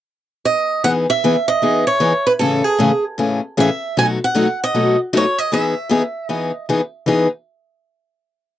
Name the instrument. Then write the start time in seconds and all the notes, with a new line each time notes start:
steel-string acoustic guitar
0.45 D#5
0.84 E3 B3 D#4 G#4 F#5
1.10 E5
1.24 E3 B3 D#4 G#4
1.48 D#5
1.62 E3 B3 D#4 G#4
1.87 C#5
2.00 E3 B3 D#4 G#4
2.27 B4
2.39 A2 C#3 E3 A3 C#4 G#4 A4
2.64 G#4
2.79 A2 C#3 E3 A3 C#4 G#4
3.18 A2 C#3 E3 A3 C#4 G#4
3.57 A2 C#3 E3 A3 C#4 G#4 E5
3.97 B2 F#3 A3 D#4 F#4 G#5
4.24 F#5
4.35 B2 F#3 A3 D#4 F#4
4.64 D#5
4.75 B2 F#3 A3 D#4 F#4
5.13 B2 F#3 A3 D#4 F#4 C#5
5.38 D#5
5.52 E3 B3 D#4 G#4 E5
5.89 E3 B3 D#4 G#4
6.27 E3 B3 D#4 G#4 D#5
6.69 E3 B3 D#4 G#4
7.06 E3 B3 D#4 G#4